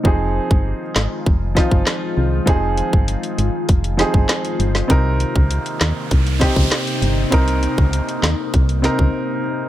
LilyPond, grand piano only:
\new Staff \with { instrumentName = "Grand piano" } { \time 4/4 \key f \minor \tempo 4 = 99 <f c' ees' aes'>4 r4. <f c' ees' f'>4 r8 | <f c' ees' aes'>4 r4. <f c' ees' aes'>4 r8 | <c c' ees' bes'>4 r4. <c c' ees' g'>4 r8 | <c c' ees' bes'>4 r4. <c c' ees' bes'>4 r8 | }